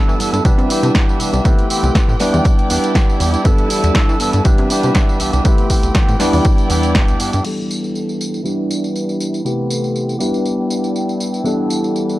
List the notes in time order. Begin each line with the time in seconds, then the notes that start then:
Already playing: E3 G3 B3 D4 E4 A4 B4 A5
0.08 E3, tambourine
0.19 G2 E3 B3 D4 A4, open hi-hat, tambourine
0.33 G2 B3 D4 A4, closed hi-hat, tambourine
0.44 C2 E3 G3 B3 D4 E4 G4 B4 E5, kick, closed hi-hat, tambourine
0.58 C3, closed hi-hat, tambourine
0.69 E3 B3 D4 G4, open hi-hat, tambourine
0.83 C3, closed hi-hat, tambourine
0.95 B3 D4 G4, kick, snare, closed hi-hat, tambourine
1.09 tambourine
1.19 C2 E3 B3 D4 G4, open hi-hat, tambourine
1.33 C2 B3 D4 G4, closed hi-hat, tambourine
1.44 C2 E3 A3 B3 C4 E4 G4 B4 G5, kick, closed hi-hat, tambourine
1.59 closed hi-hat, tambourine
1.69 E3 B3 C4 G4, open hi-hat, tambourine
1.83 C2, closed hi-hat, tambourine
1.95 E3 B3 C4 G4, kick, snare, closed hi-hat, tambourine
2.08 A2, tambourine
2.19 G3 B3 D4 E4 G4 B4 D5, snare, open hi-hat, tambourine
2.33 E2 D4 G4, closed hi-hat, tambourine
2.44 kick, closed hi-hat, tambourine
2.46 tambourine
2.59 closed hi-hat, tambourine
2.69 E2 B3 D4 G4, open hi-hat, tambourine
2.84 closed hi-hat, tambourine
2.95 B3 D4 G4, kick, snare, closed hi-hat, tambourine
3.09 tambourine
3.19 E2 B3 D4 G4, open hi-hat, tambourine
3.33 D4 G4, closed hi-hat, tambourine
3.44 G2 E3 G3 B3 D4 E4 A4 B4 A5, kick, closed hi-hat, tambourine
3.58 closed hi-hat, tambourine
3.69 E3 B3 D4 A4, open hi-hat, tambourine
3.84 E2, closed hi-hat, tambourine
3.95 E3 B3 D4 A4, kick, snare, closed hi-hat, tambourine
4.09 E3, tambourine
4.20 G2 E3 B3 D4 A4, open hi-hat, tambourine
4.33 G2 B3 D4 A4, closed hi-hat, tambourine
4.44 C2 E3 G3 B3 D4 E4 G4 B4 E5, kick, closed hi-hat, tambourine
4.58 C3, closed hi-hat, tambourine
4.69 E3 B3 D4 G4, open hi-hat, tambourine
4.83 C3, closed hi-hat, tambourine
4.94 E3 B3 D4 G4, kick, snare, closed hi-hat, tambourine
5.09 tambourine
5.19 C2 E3 B3 D4 G4, open hi-hat, tambourine
5.33 C2 B3 D4 G4, closed hi-hat, tambourine
5.44 C2 E3 A3 B3 C4 E4 G4 B4 G5, kick, closed hi-hat, tambourine
5.58 closed hi-hat, tambourine
5.69 E3 B3 C4 G4, kick, open hi-hat, tambourine
5.83 C2, closed hi-hat, tambourine
5.94 E3 B3 C4 G4, kick, snare, closed hi-hat, tambourine
6.08 A2, closed hi-hat, tambourine
6.19 E2 G3 B3 D4 E4 G4 B4 D5, snare, open hi-hat, tambourine
6.32 E2 D4 G4, open hi-hat, tambourine
6.45 kick, closed hi-hat, tambourine
6.58 closed hi-hat, tambourine
6.69 E2 B3 D4 G4, open hi-hat, tambourine
6.83 closed hi-hat, tambourine
6.94 E1 B3 D4 G4, kick, snare, closed hi-hat, tambourine
7.08 D2, closed hi-hat, tambourine
7.19 G2 B3 D4 G4, open hi-hat, tambourine
7.32 G2 D4 G4, closed hi-hat, tambourine
7.43 E3 G3 B3 D4 E4 A4 B4 G5, crash, tambourine
7.71 tambourine
7.84 tambourine
7.95 tambourine
8.09 tambourine
8.21 tambourine
8.34 tambourine
8.44 E3 G3 B3 D4 E4 G4 B4 E5, tambourine
8.71 tambourine
8.84 tambourine
8.96 tambourine
9.09 tambourine
9.20 tambourine
9.34 tambourine
9.44 C3 E3 A3 B3 C4 E4 G4 A4 B4 G5, tambourine
9.70 tambourine
9.84 tambourine
9.96 tambourine
10.09 tambourine
10.19 G3 B3 D4 E4 G4 B4 D5, tambourine
10.34 tambourine
10.45 tambourine
10.70 tambourine
10.84 tambourine
10.96 tambourine
11.09 tambourine
11.20 tambourine
11.34 tambourine
11.44 E3 G3 B3 D4 E4 A4 B4, tambourine
11.48 A4
11.70 tambourine
11.84 tambourine
11.96 tambourine
12.09 tambourine